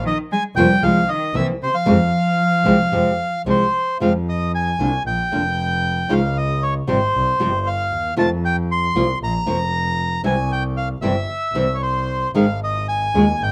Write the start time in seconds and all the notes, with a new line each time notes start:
0.05 D#3 D#5
0.32 G#3 G#5
0.56 F1 F3 G3 A#3 C#4 F4 C5 G5
0.82 C2 C3 F3 G#3 C4 F4 F5
1.08 D#3 D#5
1.33 C2 C3 E3 A#3 C4 E4 E5
1.62 C3 C5
1.74 F3 F5
1.86 F2 C3 F3 G#3 C4 G4
2.64 C2 C3 F3 G#3 C4 G4
2.92 F2 C3 F3 G#3 C4 G4
3.45 C2 C3 F3 G#3 C4 G4
3.50 C5
3.99 F2 C3 F3 G#3 C4 F4 F5
4.29 D#5
4.55 G#5
4.79 C2 D3 A#3 D4 F4
5.04 A#1 G5
5.31 F1 D3 A#3 D4 F4
6.09 C#2 C#3 F3 G#3 D#4 F4 F5
6.37 D#5
6.63 C#5
6.87 G#1 C3 F3 G3 C4 G4 C5
7.14 C2
7.40 G1 C3 F3 G3 C4 G4
7.66 F5
7.92 D#2
8.17 F2 C3 D#3 A3 C4 F4 A5
8.45 G5
8.72 C6
8.95 C2 F3 A#3 C#4 F4
9.20 A#1 A#5
9.46 F1 F3 A#3 C#4 F4
10.24 C2 C3 E3 G3 C4 E4 G#5
10.52 G5
10.77 F5
11.01 G1 C3 E3 G3 C4 E4 E5
11.53 C2 C3 E3 G3 C4 E4
11.74 C#5
11.82 C5
12.34 G#1 D#3 G#3 C4 D#4 G#4 F5
12.64 D#5
12.89 G#5
13.13 D#2 C#3 G#3 C#4 F4 G#4
13.40 G#1 G5